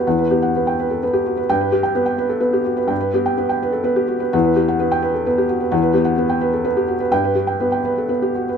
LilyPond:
<<
  \new Staff \with { instrumentName = "Felt piano" } { \time 3/4 \key e \minor \tempo 4 = 127 << { r2. | g''8 r2 r8 | r2. | r4 r16 g''8 r4 r16 |
r2. | g''8 r2 r8 | } \\ { <b' fis''>16 b'16 g'16 fis''16 b'16 g''16 b'16 a'16 b'16 g'16 fis'16 b'16 | r16 b'16 g'16 g''16 b'16 g''16 b'16 a'16 b'16 g'16 fis'16 b'16 | g''16 b'16 g'16 g''16 b'16 g''16 b'16 a'16 b'16 g'16 fis'16 b'16 | fis''16 b'16 g'16 fis''16 b'8 b'16 a'16 b'16 g'16 fis'16 b'16 |
fis''16 b'16 g'16 fis''16 b'16 g''16 b'16 a'16 b'16 g'16 fis'16 b'16 | r16 b'16 g'16 g''16 b'16 g''16 b'16 a'16 b'16 g'16 fis'16 b'16 | } >> }
  \new Staff \with { instrumentName = "Felt piano" } { \time 3/4 \key e \minor e,8 b8 b8 r8 b8 r8 | g,4 b8 r8 b8 r8 | g,8 b8 b8 r8 b8 r8 | e,4 b8 r8 b8 r8 |
e,8 b8 b8 r8 b8 r8 | g,4 b8 r8 b8 r8 | }
>>